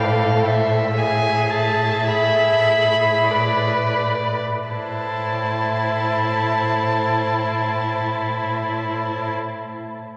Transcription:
Already playing: A2 A4 C5 F5
0.45 E5
0.96 G#4 E5 G#5
1.51 A5
2.07 G#4 B5
3.30 B4 D5
4.69 A2 E4 C5 A5

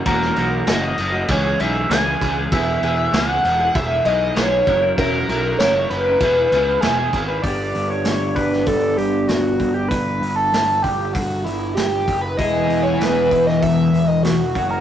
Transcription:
0.05 E1 E3 A#3 C#4 F#4 A#4, kick, crash
0.22 snare
0.36 B1 E3 A#3 C#4 F#4, crash
0.66 F#1 E3 A#3 C#4 F#4 D#5, snare, crash
0.82 A#3 C#4 F#4
0.98 F#1, muted overdriven electric guitar stroke, crash
1.12 A#3 C#4 F#4
1.28 C#2 E3 G#3 C#4 G#4 C#5, kick, crash
1.44 G#3 C#4 G#4
1.60 B1 E3 G#3 C#4 G#4 E5, crash
1.89 C#2 E3 G#3 C#4 G#4 G#5, snare, crash
2.06 G#3 C#4 G#4
2.21 C#2, kick, crash
2.38 G#3 C#4 G#4
2.52 E1 B3 E4 G#4 E5, kick, crash
2.82 E1 B3 E4 G#4, crash
3.13 C#2 B3 E4 G#4 F#5, snare, crash
3.29 E4 G#4
3.44 E1, muted overdriven electric guitar stroke, crash
3.60 E4 G#4
3.75 E1 E5, kick, crash
3.90 E4 G#4
4.04 B1 B3 E4 G#4 D#5, crash
4.35 B1 B3 E4 G#4 C#5, snare, crash
4.50 E4 G#4
4.66 F#1 F#3 C#4 E4 A#4, kick, crash
4.82 C#4 E4 A#4
4.98 E1 F#3 C#4 E4 A#4, kick, crash
5.28 B1 F#3 C#4 E4 A#4, crash
5.59 F#1 F#3 C#4 E4 A#4 C#5, snare, crash
5.74 C#4 E4 A#4
5.90 F#1 B4, muted overdriven electric guitar stroke, crash
6.06 C#4 E4 A#4
6.20 E1 B3 E4, kick, crash
6.24 G#4
6.38 E4 G#4
6.52 C#2 B3 E4 G#4, crash
6.81 E1 B3 E4 G#4, snare, crash
6.86 G#4
6.99 E4 G#4
7.13 G#1, kick, crash
7.28 E4 G#4 B4
7.42 G1 B3 D4 D5, kick, open hi-hat
7.47 G4
7.75 G1, open hi-hat
7.90 C#5
8.05 G1, snare, open hi-hat
8.35 G1 B4, kick, open hi-hat
8.52 snare
8.66 G1 A4, kick, open hi-hat
8.97 G1 G4, open hi-hat
9.28 G1 F#4, snare, open hi-hat
9.59 G1, kick, open hi-hat
9.74 G4
9.88 G1 B4, kick, open hi-hat
10.21 G1, open hi-hat
10.36 A4
10.53 G1, snare, open hi-hat
10.82 G1 G4, kick, open hi-hat
11.13 G1 F#4, kick, open hi-hat
11.45 G1 E4, open hi-hat
11.75 G1 G4, snare, open hi-hat
12.08 F#1, kick, open hi-hat
12.21 B4
12.37 E1 E3 B3 E4 G#4 D#5, kick, open hi-hat
12.69 E1, open hi-hat
12.83 C#5
12.99 E1 B4, snare, open hi-hat
13.31 E1, kick, open hi-hat
13.47 D#5, snare
13.62 E1 E5, kick, open hi-hat
13.92 E1, open hi-hat
14.08 D#5
14.23 E1 F#4, snare, open hi-hat
14.55 F#1 A#3 C#4 F#4, kick, open hi-hat
14.70 A#4

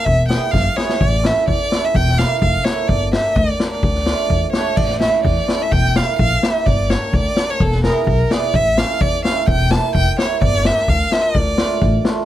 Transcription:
0.05 E1 E5, kick
0.29 B3 E4 G#4 G5, snare
0.51 F#1 F5, kick, snare
0.76 B3 E4 G#4 C#5, snare
0.89 snare
1.01 A1 D5, kick
1.23 C#4 E4 A4 E5, snare
1.48 E2 D5, kick
1.72 C#4 E4 A4, snare
1.85 E5
1.94 E1 G5, kick
2.07 snare
2.18 A#3 E4 G4 F5, snare
2.42 F1 F5, kick
2.65 A#3 E4 A4 C#5, snare
2.88 G1 D5, kick
3.12 A#3 D4 G4 E5, snare
3.36 D2 D5, kick
3.60 A#3 D4 G4, snare
3.73 D5
3.83 D2, kick
3.95 snare
4.06 A3 D4 F4, snare
4.30 E2, kick
4.53 A3 D4 G4 C#5, snare
4.77 A1 D5, kick, crash
4.89 snare
5.00 A3 C#4 E4 E5, snare
5.24 E2 D5, kick
5.48 A3 C#4 E4, snare
5.62 E5
5.72 E1 G5, kick
5.96 A#3 E4 G4 F5, snare
6.19 A#1 F5, kick
6.43 A#3 E4 G4 E5, snare
6.66 G1 D5, kick
6.90 A#3 D4 G4 C#5, snare
7.13 D2 D5, kick
7.36 A#3 D4 G4, snare
7.50 C#5
7.60 E1 A4, kick
7.72 snare
7.83 B3 E4 G#4 A#4, snare
8.06 B1 A#4, kick
8.31 B3 E4 G#4 D5, snare
8.54 A1 E5, kick
8.78 C#4 E4 A4 F5, snare
9.00 E2 D5, kick
9.24 C#4 E4 A4 F5, snare
9.48 E1 G5, kick
9.70 A#3 E4 G4 A5, snare
9.95 F1 G5, kick
10.18 A#3 E4 G4 C#5, snare
10.41 G1 D5, kick
10.54 snare
10.65 A#3 D4 G4 E5, snare
10.76 snare
10.88 D2 F5, kick
11.11 A#3 D4 F4 E5, snare
11.22 D5
11.35 D2, kick
11.58 A3 D4 F4, snare
11.82 A1, kick
12.05 A3 D4 F4, snare

